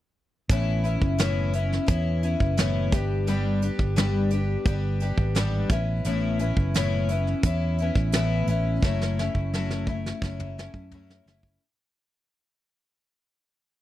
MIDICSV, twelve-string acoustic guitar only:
0, 0, Header, 1, 2, 480
1, 0, Start_track
1, 0, Tempo, 693642
1, 348, Time_signature, 4, 2, 24, 8
1, 9561, End_track
2, 0, Start_track
2, 0, Title_t, "Twelve-string acoustic guitar"
2, 0, Program_c, 0, 25
2, 343, Note_on_c, 0, 45, 70
2, 346, Note_on_c, 0, 52, 74
2, 349, Note_on_c, 0, 59, 81
2, 352, Note_on_c, 0, 61, 75
2, 354, Note_on_c, 0, 64, 88
2, 571, Note_off_c, 0, 64, 0
2, 579, Note_off_c, 0, 61, 0
2, 579, Note_on_c, 0, 64, 53
2, 584, Note_off_c, 0, 59, 0
2, 585, Note_off_c, 0, 45, 0
2, 586, Note_off_c, 0, 52, 0
2, 588, Note_on_c, 0, 61, 51
2, 593, Note_on_c, 0, 59, 38
2, 813, Note_off_c, 0, 59, 0
2, 818, Note_off_c, 0, 61, 0
2, 819, Note_off_c, 0, 64, 0
2, 819, Note_on_c, 0, 45, 81
2, 821, Note_on_c, 0, 59, 83
2, 823, Note_on_c, 0, 52, 80
2, 826, Note_on_c, 0, 61, 92
2, 827, Note_on_c, 0, 64, 84
2, 1055, Note_off_c, 0, 64, 0
2, 1062, Note_off_c, 0, 45, 0
2, 1063, Note_off_c, 0, 59, 0
2, 1063, Note_off_c, 0, 61, 0
2, 1063, Note_on_c, 0, 64, 58
2, 1065, Note_off_c, 0, 52, 0
2, 1071, Note_on_c, 0, 61, 49
2, 1074, Note_on_c, 0, 59, 43
2, 1289, Note_off_c, 0, 59, 0
2, 1291, Note_on_c, 0, 52, 57
2, 1297, Note_off_c, 0, 61, 0
2, 1297, Note_on_c, 0, 59, 62
2, 1299, Note_off_c, 0, 64, 0
2, 1306, Note_on_c, 0, 61, 71
2, 1307, Note_on_c, 0, 64, 68
2, 1535, Note_off_c, 0, 64, 0
2, 1538, Note_off_c, 0, 52, 0
2, 1541, Note_off_c, 0, 59, 0
2, 1542, Note_off_c, 0, 61, 0
2, 1543, Note_on_c, 0, 64, 60
2, 1550, Note_on_c, 0, 61, 53
2, 1553, Note_on_c, 0, 59, 45
2, 1777, Note_off_c, 0, 61, 0
2, 1777, Note_off_c, 0, 64, 0
2, 1778, Note_off_c, 0, 59, 0
2, 1781, Note_on_c, 0, 52, 82
2, 1782, Note_on_c, 0, 45, 84
2, 1785, Note_on_c, 0, 61, 95
2, 1785, Note_on_c, 0, 64, 91
2, 1787, Note_on_c, 0, 59, 92
2, 2023, Note_off_c, 0, 45, 0
2, 2023, Note_off_c, 0, 52, 0
2, 2023, Note_off_c, 0, 64, 0
2, 2025, Note_off_c, 0, 61, 0
2, 2026, Note_off_c, 0, 59, 0
2, 2026, Note_on_c, 0, 67, 58
2, 2036, Note_on_c, 0, 62, 53
2, 2040, Note_on_c, 0, 55, 51
2, 2040, Note_on_c, 0, 59, 49
2, 2257, Note_off_c, 0, 55, 0
2, 2262, Note_off_c, 0, 62, 0
2, 2263, Note_off_c, 0, 59, 0
2, 2263, Note_off_c, 0, 67, 0
2, 2264, Note_on_c, 0, 43, 72
2, 2266, Note_on_c, 0, 55, 80
2, 2267, Note_on_c, 0, 50, 72
2, 2270, Note_on_c, 0, 62, 81
2, 2271, Note_on_c, 0, 59, 83
2, 2272, Note_on_c, 0, 67, 83
2, 2501, Note_off_c, 0, 67, 0
2, 2504, Note_off_c, 0, 43, 0
2, 2504, Note_off_c, 0, 59, 0
2, 2505, Note_off_c, 0, 55, 0
2, 2506, Note_off_c, 0, 50, 0
2, 2507, Note_off_c, 0, 62, 0
2, 2509, Note_on_c, 0, 67, 52
2, 2512, Note_on_c, 0, 59, 39
2, 2514, Note_on_c, 0, 62, 53
2, 2516, Note_on_c, 0, 55, 43
2, 2736, Note_off_c, 0, 55, 0
2, 2739, Note_off_c, 0, 59, 0
2, 2741, Note_off_c, 0, 62, 0
2, 2741, Note_on_c, 0, 43, 82
2, 2742, Note_on_c, 0, 50, 82
2, 2743, Note_off_c, 0, 67, 0
2, 2745, Note_on_c, 0, 55, 81
2, 2747, Note_on_c, 0, 59, 82
2, 2749, Note_on_c, 0, 62, 90
2, 2752, Note_on_c, 0, 67, 87
2, 2977, Note_off_c, 0, 67, 0
2, 2983, Note_off_c, 0, 43, 0
2, 2983, Note_off_c, 0, 50, 0
2, 2984, Note_off_c, 0, 59, 0
2, 2985, Note_off_c, 0, 55, 0
2, 2985, Note_on_c, 0, 67, 63
2, 2987, Note_off_c, 0, 62, 0
2, 2992, Note_on_c, 0, 59, 46
2, 2995, Note_on_c, 0, 62, 52
2, 3000, Note_on_c, 0, 55, 49
2, 3220, Note_off_c, 0, 55, 0
2, 3221, Note_off_c, 0, 59, 0
2, 3225, Note_off_c, 0, 67, 0
2, 3227, Note_off_c, 0, 62, 0
2, 3228, Note_on_c, 0, 55, 59
2, 3230, Note_on_c, 0, 59, 62
2, 3235, Note_on_c, 0, 62, 68
2, 3236, Note_on_c, 0, 67, 75
2, 3464, Note_off_c, 0, 67, 0
2, 3467, Note_off_c, 0, 55, 0
2, 3467, Note_off_c, 0, 59, 0
2, 3468, Note_off_c, 0, 62, 0
2, 3473, Note_on_c, 0, 67, 56
2, 3476, Note_on_c, 0, 62, 54
2, 3478, Note_on_c, 0, 59, 52
2, 3481, Note_on_c, 0, 55, 47
2, 3697, Note_off_c, 0, 55, 0
2, 3698, Note_off_c, 0, 59, 0
2, 3700, Note_on_c, 0, 43, 78
2, 3704, Note_off_c, 0, 62, 0
2, 3705, Note_on_c, 0, 55, 81
2, 3706, Note_on_c, 0, 59, 81
2, 3709, Note_off_c, 0, 67, 0
2, 3709, Note_on_c, 0, 50, 86
2, 3713, Note_on_c, 0, 62, 83
2, 3717, Note_on_c, 0, 67, 88
2, 3943, Note_off_c, 0, 43, 0
2, 3945, Note_off_c, 0, 55, 0
2, 3946, Note_off_c, 0, 59, 0
2, 3947, Note_off_c, 0, 50, 0
2, 3948, Note_off_c, 0, 67, 0
2, 3949, Note_off_c, 0, 62, 0
2, 3951, Note_on_c, 0, 64, 54
2, 3957, Note_on_c, 0, 61, 51
2, 3965, Note_on_c, 0, 59, 47
2, 4184, Note_off_c, 0, 59, 0
2, 4185, Note_off_c, 0, 61, 0
2, 4187, Note_on_c, 0, 45, 82
2, 4188, Note_off_c, 0, 64, 0
2, 4189, Note_on_c, 0, 52, 73
2, 4192, Note_on_c, 0, 59, 78
2, 4193, Note_on_c, 0, 61, 81
2, 4196, Note_on_c, 0, 64, 81
2, 4416, Note_off_c, 0, 64, 0
2, 4423, Note_off_c, 0, 61, 0
2, 4424, Note_on_c, 0, 64, 51
2, 4426, Note_off_c, 0, 45, 0
2, 4427, Note_off_c, 0, 52, 0
2, 4429, Note_off_c, 0, 59, 0
2, 4431, Note_on_c, 0, 61, 45
2, 4439, Note_on_c, 0, 59, 42
2, 4665, Note_off_c, 0, 64, 0
2, 4668, Note_off_c, 0, 61, 0
2, 4673, Note_off_c, 0, 59, 0
2, 4674, Note_on_c, 0, 45, 85
2, 4675, Note_on_c, 0, 52, 82
2, 4677, Note_on_c, 0, 61, 92
2, 4679, Note_on_c, 0, 64, 97
2, 4680, Note_on_c, 0, 59, 83
2, 4900, Note_off_c, 0, 64, 0
2, 4908, Note_on_c, 0, 64, 55
2, 4910, Note_off_c, 0, 45, 0
2, 4910, Note_off_c, 0, 61, 0
2, 4911, Note_off_c, 0, 52, 0
2, 4913, Note_off_c, 0, 59, 0
2, 4918, Note_on_c, 0, 61, 56
2, 4924, Note_on_c, 0, 59, 44
2, 5143, Note_off_c, 0, 59, 0
2, 5147, Note_off_c, 0, 64, 0
2, 5147, Note_on_c, 0, 52, 63
2, 5151, Note_off_c, 0, 61, 0
2, 5151, Note_on_c, 0, 59, 69
2, 5159, Note_on_c, 0, 61, 62
2, 5163, Note_on_c, 0, 64, 67
2, 5387, Note_off_c, 0, 52, 0
2, 5389, Note_off_c, 0, 59, 0
2, 5390, Note_off_c, 0, 64, 0
2, 5393, Note_off_c, 0, 61, 0
2, 5398, Note_on_c, 0, 64, 53
2, 5411, Note_on_c, 0, 61, 54
2, 5414, Note_on_c, 0, 59, 49
2, 5628, Note_off_c, 0, 59, 0
2, 5632, Note_off_c, 0, 61, 0
2, 5633, Note_off_c, 0, 64, 0
2, 5633, Note_on_c, 0, 45, 80
2, 5636, Note_on_c, 0, 59, 81
2, 5637, Note_on_c, 0, 52, 83
2, 5640, Note_on_c, 0, 61, 81
2, 5644, Note_on_c, 0, 64, 86
2, 5858, Note_off_c, 0, 64, 0
2, 5864, Note_off_c, 0, 61, 0
2, 5867, Note_on_c, 0, 64, 60
2, 5870, Note_off_c, 0, 45, 0
2, 5872, Note_off_c, 0, 52, 0
2, 5872, Note_off_c, 0, 59, 0
2, 5872, Note_on_c, 0, 61, 51
2, 5883, Note_on_c, 0, 59, 45
2, 6107, Note_off_c, 0, 64, 0
2, 6110, Note_off_c, 0, 61, 0
2, 6111, Note_on_c, 0, 54, 70
2, 6115, Note_off_c, 0, 59, 0
2, 6117, Note_on_c, 0, 57, 74
2, 6119, Note_on_c, 0, 61, 83
2, 6124, Note_on_c, 0, 64, 91
2, 6349, Note_off_c, 0, 54, 0
2, 6350, Note_off_c, 0, 64, 0
2, 6352, Note_off_c, 0, 57, 0
2, 6354, Note_off_c, 0, 61, 0
2, 6358, Note_on_c, 0, 64, 48
2, 6368, Note_on_c, 0, 61, 49
2, 6376, Note_on_c, 0, 57, 45
2, 6593, Note_off_c, 0, 64, 0
2, 6598, Note_off_c, 0, 57, 0
2, 6598, Note_off_c, 0, 61, 0
2, 6602, Note_on_c, 0, 54, 88
2, 6607, Note_on_c, 0, 57, 91
2, 6609, Note_on_c, 0, 61, 87
2, 6613, Note_on_c, 0, 64, 93
2, 6831, Note_off_c, 0, 64, 0
2, 6835, Note_off_c, 0, 54, 0
2, 6837, Note_off_c, 0, 57, 0
2, 6838, Note_off_c, 0, 61, 0
2, 6839, Note_on_c, 0, 64, 55
2, 6846, Note_on_c, 0, 61, 52
2, 6851, Note_on_c, 0, 57, 44
2, 7074, Note_off_c, 0, 64, 0
2, 7077, Note_off_c, 0, 61, 0
2, 7078, Note_off_c, 0, 57, 0
2, 7081, Note_on_c, 0, 54, 59
2, 7086, Note_on_c, 0, 57, 59
2, 7088, Note_on_c, 0, 61, 71
2, 7092, Note_on_c, 0, 64, 71
2, 7314, Note_off_c, 0, 64, 0
2, 7315, Note_off_c, 0, 54, 0
2, 7317, Note_off_c, 0, 57, 0
2, 7318, Note_off_c, 0, 61, 0
2, 7322, Note_on_c, 0, 64, 58
2, 7330, Note_on_c, 0, 61, 52
2, 7334, Note_on_c, 0, 57, 45
2, 7555, Note_off_c, 0, 64, 0
2, 7559, Note_off_c, 0, 61, 0
2, 7561, Note_off_c, 0, 57, 0
2, 7561, Note_on_c, 0, 54, 82
2, 7568, Note_on_c, 0, 57, 78
2, 7569, Note_on_c, 0, 64, 85
2, 7570, Note_on_c, 0, 61, 88
2, 7791, Note_off_c, 0, 64, 0
2, 7794, Note_off_c, 0, 54, 0
2, 7797, Note_off_c, 0, 61, 0
2, 7798, Note_off_c, 0, 57, 0
2, 7800, Note_on_c, 0, 64, 57
2, 7805, Note_on_c, 0, 61, 52
2, 7812, Note_on_c, 0, 57, 47
2, 8034, Note_off_c, 0, 64, 0
2, 8036, Note_off_c, 0, 61, 0
2, 8040, Note_off_c, 0, 57, 0
2, 9561, End_track
0, 0, End_of_file